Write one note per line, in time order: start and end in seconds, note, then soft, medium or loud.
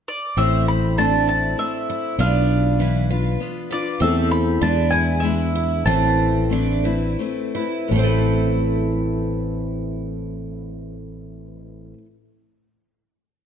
0.08 0.38 D5 medium
0.37 1.54 A1 medium
0.37 0.97 A2 medium
0.37 0.98 E3 medium
0.37 0.96 A3 soft
0.37 0.97 C4 medium
0.37 0.98 E4 medium
0.37 0.98 C5 medium
0.37 0.68 E5 medium
0.68 0.98 B5 medium
0.98 1.56 A3 soft
0.98 1.57 C4 medium
0.98 1.27 D4 medium
0.98 1.58 E4 medium
0.98 1.59 C5 medium
0.98 1.28 A5 medium
1.28 1.87 E4 soft
1.28 1.59 A5 medium
1.58 2.18 A3 soft
1.58 2.19 C4 soft
1.58 2.19 E4 soft
1.58 2.19 C5 soft
1.58 2.15 E5 medium
1.90 2.19 E4 medium
2.19 3.36 B1 medium
2.19 2.78 B3 medium
2.19 2.79 D4 medium
2.19 2.80 F4 medium
2.19 2.80 B4 medium
2.19 3.06 F5 medium
2.79 3.09 E3 medium
2.79 3.09 B3 soft
2.79 3.10 D4 medium
2.79 3.09 B4 medium
3.10 3.40 D4 soft
3.10 3.40 F4 soft
3.10 3.40 B4 soft
3.40 3.70 B3 medium
3.40 3.71 D4 soft
3.40 3.71 F4 medium
3.40 3.69 B4 medium
3.70 4.02 D4 soft
3.70 4.01 F4 soft
3.70 4.00 B4 soft
3.70 3.99 D5 medium
4.01 4.58 E2 medium
4.01 4.65 E3 medium
4.01 4.61 A3 medium
4.01 4.61 C4 medium
4.01 4.62 E4 medium
4.01 4.62 A4 medium
4.01 4.31 E5 medium
4.31 4.62 B5 medium
4.61 5.82 E2 medium
4.61 5.21 G#3 medium
4.61 5.22 D4 medium
4.61 5.24 E4 medium
4.61 5.24 B4 medium
4.61 4.90 A5 medium
4.91 5.53 E4 medium
4.91 5.23 G#5 medium
5.20 5.86 G#3 soft
5.20 5.86 D4 medium
5.20 5.86 E5 medium
5.24 5.87 E4 medium
5.24 5.87 B4 soft
5.55 5.86 E4 medium
5.85 7.15 A1 medium
5.85 6.51 A2 medium
5.85 6.51 E3 medium
5.85 6.49 A3 medium
5.85 6.50 C4 medium
5.85 6.50 E4 medium
5.85 6.52 B4 medium
5.85 6.81 A5 medium
6.50 6.84 A3 soft
6.50 6.84 C4 soft
6.50 6.85 D4 medium
6.50 6.83 E4 medium
6.50 6.83 B4 medium
6.84 7.18 A3 soft
6.84 7.19 C4 soft
6.84 7.19 E4 soft
6.84 7.19 B4 soft
7.19 7.55 A3 medium
7.19 7.55 C4 medium
7.19 7.55 E4 medium
7.19 7.54 B4 medium
7.56 7.93 A3 soft
7.56 7.93 C4 soft
7.56 7.92 E4 soft
7.56 7.92 B4 soft
7.88 11.93 A1 medium
7.88 11.94 A2 medium
7.88 11.93 A3 medium
7.92 11.98 E3 medium
7.92 12.02 A3 medium
7.98 12.04 C4 medium
7.98 12.07 E4 medium
8.03 12.05 A4 medium
8.03 12.10 B4 medium